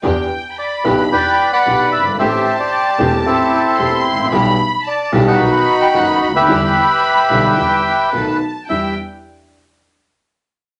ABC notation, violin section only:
X:1
M:4/4
L:1/8
Q:1/4=111
K:Em
V:1 name="Violin section"
g2 b6 | a6 c'2 | b2 a2 b4 | b4 g2 a2 |
g z6 z |]